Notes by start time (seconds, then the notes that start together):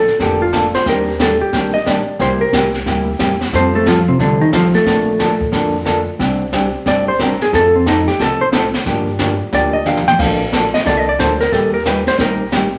Already playing: A4
0.08 snare
0.19 F1 D3 F3 A#3 D4 G4 A4, brush sweep, kick, snare
0.42 F4
0.52 D3 F3 A#3 D4 A4, kick, snare, hi-hat pedal
0.74 C5, snare
0.86 D#2 D#3 G3 A#3 D4 G4 A#4, brush sweep, kick, snare
1.19 D#3 G3 A#3 D4 G4 A4, kick, snare, hi-hat pedal
1.41 G4
1.53 A#1 D#3 G3 A#3 D4 G4, brush sweep, kick, snare
1.74 D#5
1.86 D#3 G3 A#3 D4 G4 D5, kick, snare, hi-hat pedal
2.19 C2 C3 G3 A#3 E4 G4 C5, brush sweep, kick, snare
2.41 A#4
2.53 C2 C3 G3 A#3 E4 G4, kick, snare, hi-hat pedal
2.74 snare
2.86 D2 C3 G3 A#3 E4 G4, brush sweep, kick, snare
3.19 E2 C3 G3 A#3 E4 G4, kick, snare, hi-hat pedal
3.41 snare
3.53 F2 F3 G3 C4 F4 A4 C5, brush sweep, kick, snare
3.75 A3 A4
3.86 F3 G3 C4 F4 A4, kick, snare, hi-hat pedal
4.08 C3 C4
4.19 C2 D3 F3 G3 C4 D4 F4 A4, brush sweep, kick, snare
4.41 D#3 D#4
4.52 F3 G3 C4 F4 A4, kick, snare, hi-hat pedal
4.74 A3 A4, snare
4.86 A#1 D3 F3 A#3 D4 A4, brush sweep, kick, snare
5.19 D3 F3 A#3 D4 A4, kick, snare, hi-hat pedal
5.41 kick
5.52 F2 D3 F3 A#3 D4 A4, brush sweep, kick, snare
5.85 D3 F3 A#3 D4 A4, kick, snare, hi-hat pedal
6.19 C2 C3 G3 C4 D4 G4, brush sweep, kick, snare
6.53 C3 G3 C4 D4 G4, kick, snare, hi-hat pedal
6.86 G1 C3 G3 C4 D4 G4 D5, brush sweep, kick, snare
7.08 C5
7.19 C3 G3 C4 D4 G4 A#4, kick, snare, hi-hat pedal
7.41 G#4, snare
7.53 F2 F3 C4 D#4 A4, brush sweep, kick, snare
7.75 C4
7.86 F3 C4 D#4 A4, kick, snare, hi-hat pedal
8.07 G4, snare
8.19 C2 F3 C4 D#4 A4, brush sweep, kick, snare
8.41 C5
8.52 F3 C4 D#4 A4, kick, snare, hi-hat pedal
8.74 snare
8.86 G2 D3 F3 A#3 D4 G4, brush sweep, kick, snare
9.19 D3 F3 A#3 D4 G4, kick, snare, hi-hat pedal
9.52 D2 D3 F3 A#3 D4 G4 D5, brush sweep, kick, snare
9.73 D#5
9.86 D3 F3 A#3 D4 G4 F5, hi-hat pedal, mid tom
9.97 mid tom
10.08 G5, mid tom
10.19 A#1 D3 F3 A#3 D4 A4 F5, brush sweep, kick, snare, crash
10.52 D3 F3 A#3 D4 A4, kick, snare, hi-hat pedal
10.74 D#5, snare
10.85 C2 D3 F3 A#3 D4 A4 D5, brush sweep, kick, snare
10.97 D#5
11.09 D5
11.18 D2 D3 F3 A#3 D4 A4 C5, kick, snare, hi-hat pedal
11.40 A#4, snare
11.52 D#2 D#3 G3 A#3 D#4 G4 A4, brush sweep, kick, snare
11.74 A#4
11.85 D#3 G3 A#3 D#4 G4 B4, kick, snare, hi-hat pedal
12.07 C5, snare
12.18 A#1 D#3 G3 A#3 D#4 G4 A#4, brush sweep, kick, snare
12.52 D#3 G3 A#3 D#4 G4, kick, snare, hi-hat pedal